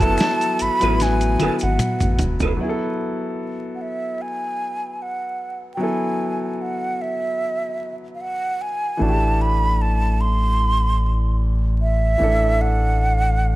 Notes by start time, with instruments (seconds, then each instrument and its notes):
Already playing: grand piano E4 A4, clean electric guitar E4 A4 B4, flute A5
0.00 analog synth bass F#1, grand piano F#3 B3 E4 A4, kick, closed hi-hat, maracas
0.18 finger snap, snare, closed hi-hat, maracas
0.41 closed hi-hat, maracas
0.59 analog synth bass A1, flute B5, closed hi-hat, maracas
0.80 analog synth bass A1, grand piano F#3 B3 E4 B4, clean electric guitar E4 A4 B4, closed hi-hat, maracas
1.00 flute G#5, muted clean electric guitar stroke, snare, closed hi-hat, maracas
1.21 closed hi-hat, maracas
1.40 analog synth bass G#1, clean electric guitar E4 A4 B4, closed hi-hat, high tom
1.59 analog synth bass G#1, closed hi-hat, maracas
1.63 flute F#5
1.79 finger snap, closed hi-hat, mid tom, maracas
2.01 analog synth bass A1, closed hi-hat, mid tom, maracas
2.19 analog synth bass E1, closed hi-hat, floor tom, maracas
2.40 analog synth bass F1, clean electric guitar E4 A4 B4, closed hi-hat, floor tom, maracas
2.57 grand piano F#3 B3
2.61 grand piano E4 G#4
2.69 grand piano A4
3.75 flute F#5
3.82 flute E5
4.22 flute G#5
5.02 flute F#5
5.74 grand piano F#3, flute G5
5.79 grand piano B3 E4 A4, flute G#5
6.62 flute F#5
7.02 flute E5
8.15 flute F5
8.21 flute F#5
8.62 flute G#5
8.97 analog synth bass A1, grand piano E3 A3
9.01 grand piano D4 F#4, flute A5
9.10 grand piano G4
9.41 flute B5
9.81 flute A5
10.21 flute C6
11.82 flute E5
12.18 analog synth bass A1, grand piano E3 A3 D4
12.23 grand piano A4
12.61 flute F#5